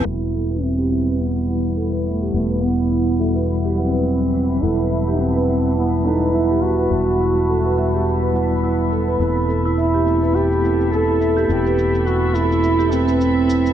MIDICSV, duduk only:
0, 0, Header, 1, 2, 480
1, 0, Start_track
1, 0, Key_signature, 1, "minor"
1, 0, Tempo, 571429
1, 48, Time_signature, 4, 2, 24, 8
1, 11534, End_track
2, 0, Start_track
2, 0, Title_t, "Duduk"
2, 0, Program_c, 0, 69
2, 35, Note_on_c, 0, 64, 100
2, 518, Note_on_c, 0, 60, 85
2, 531, Note_off_c, 0, 64, 0
2, 1006, Note_on_c, 0, 59, 70
2, 1019, Note_off_c, 0, 60, 0
2, 1487, Note_off_c, 0, 59, 0
2, 1738, Note_on_c, 0, 57, 70
2, 1956, Note_off_c, 0, 57, 0
2, 1972, Note_on_c, 0, 57, 88
2, 2213, Note_on_c, 0, 59, 93
2, 2225, Note_off_c, 0, 57, 0
2, 2690, Note_off_c, 0, 59, 0
2, 3182, Note_on_c, 0, 60, 78
2, 3887, Note_on_c, 0, 64, 94
2, 3899, Note_off_c, 0, 60, 0
2, 4313, Note_on_c, 0, 63, 58
2, 4326, Note_off_c, 0, 64, 0
2, 4366, Note_on_c, 0, 60, 84
2, 4378, Note_off_c, 0, 63, 0
2, 4845, Note_off_c, 0, 60, 0
2, 4850, Note_on_c, 0, 59, 87
2, 5089, Note_on_c, 0, 63, 88
2, 5102, Note_off_c, 0, 59, 0
2, 5331, Note_on_c, 0, 64, 88
2, 5344, Note_off_c, 0, 63, 0
2, 5576, Note_on_c, 0, 66, 102
2, 5588, Note_off_c, 0, 64, 0
2, 7012, Note_off_c, 0, 66, 0
2, 8215, Note_on_c, 0, 64, 91
2, 8697, Note_on_c, 0, 67, 100
2, 8709, Note_off_c, 0, 64, 0
2, 9170, Note_off_c, 0, 67, 0
2, 9175, Note_on_c, 0, 69, 100
2, 9618, Note_off_c, 0, 69, 0
2, 9660, Note_on_c, 0, 67, 100
2, 10135, Note_on_c, 0, 66, 93
2, 10148, Note_off_c, 0, 67, 0
2, 10372, Note_on_c, 0, 64, 93
2, 10385, Note_off_c, 0, 66, 0
2, 10852, Note_on_c, 0, 60, 82
2, 10865, Note_off_c, 0, 64, 0
2, 11534, Note_off_c, 0, 60, 0
2, 11534, End_track
0, 0, End_of_file